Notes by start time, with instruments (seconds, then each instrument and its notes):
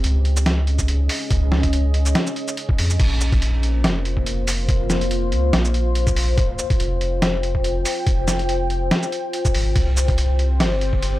Already playing: ambient pad C#4 G#4 D#5
0.04 sub bass C#2, closed hi-hat
0.25 closed hi-hat
0.36 shaker
0.46 snare, closed hi-hat
0.67 closed hi-hat
0.79 kick, shaker
0.88 closed hi-hat
1.09 open hi-hat
1.30 sub bass C#2, kick, closed hi-hat
1.52 snare
1.63 kick, closed hi-hat
1.73 closed hi-hat
1.94 closed hi-hat
2.06 shaker
2.15 snare, closed hi-hat
2.27 shaker
2.36 closed hi-hat
2.48 shaker
2.57 closed hi-hat
2.69 kick
2.78 sub bass F2, open hi-hat
2.90 shaker
3.00 sub bass A#1, ambient pad A#3 F4 C5, kick, closed hi-hat, crash
3.21 shaker
3.32 kick, closed hi-hat
3.42 closed hi-hat
3.63 closed hi-hat
3.84 sub bass F1, snare, closed hi-hat
4.05 closed hi-hat
4.17 kick
4.26 closed hi-hat
4.48 open hi-hat, shaker
4.69 kick, closed hi-hat
4.90 snare, shaker
5.01 closed hi-hat
5.11 closed hi-hat
5.32 sub bass C#2, closed hi-hat
5.53 sub bass A#1, snare, closed hi-hat
5.65 shaker
5.74 closed hi-hat
5.95 closed hi-hat
6.07 kick, shaker
6.16 open hi-hat
6.38 ambient pad G5, kick, closed hi-hat
6.59 shaker
6.70 kick, closed hi-hat
6.80 sub bass F1, closed hi-hat
7.01 closed hi-hat
7.22 snare, closed hi-hat
7.43 closed hi-hat
7.55 kick
7.64 closed hi-hat
7.85 open hi-hat, shaker
8.07 sub bass F1, kick, closed hi-hat
8.28 snare, shaker
8.39 closed hi-hat
8.49 closed hi-hat
8.70 closed hi-hat
8.91 snare, closed hi-hat
9.03 shaker
9.12 closed hi-hat
9.33 closed hi-hat
9.45 kick, shaker
9.54 sub bass G#1, open hi-hat
9.76 sub bass C2, ambient pad C4 G4 C5, kick, closed hi-hat, ride
9.97 shaker
10.08 kick, closed hi-hat
10.18 closed hi-hat, ride
10.39 closed hi-hat
10.60 sub bass G1, snare, closed hi-hat, ride
10.81 closed hi-hat
10.93 kick
11.02 closed hi-hat, ride